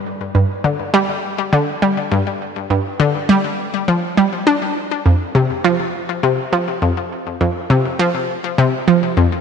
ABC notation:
X:1
M:4/4
L:1/16
Q:1/4=102
K:F
V:1 name="Synth arpeggio sound" clef=bass
z2 G,,2 D, z G,2 z2 D, z G, z G,,2 | z2 G,,2 D, z G,2 z2 F, z G,2 D2 | z2 F,,2 C, z F,2 z2 C, z F, z F,,2 | z2 F,,2 C, z F,2 z2 C, z F, z F,,2 |]